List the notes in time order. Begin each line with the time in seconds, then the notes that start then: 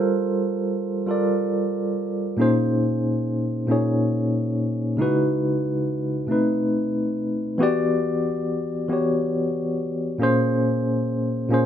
Already playing: G3 F4 A4 A#4 C5
1.06 G3 F4 A4 A#4
1.11 D5
2.37 A#2 A#3 C#4 D#4 G#4
2.42 C5
3.67 A#2 A#3 C#4 D#4
3.71 G#4 C#5
4.97 C#3 G#3 D#4 E4 F#4
5.02 B4
6.27 B2 A3 C4 D#4
6.32 B4
7.58 E3 B3 F#4 G4
7.63 D5
8.88 E3 B3 F#4 G4
8.93 C#5
10.18 A#2 A#3 C#4 G#4
10.23 C5
11.49 A#2 A#3 C#4 G#4
11.54 C5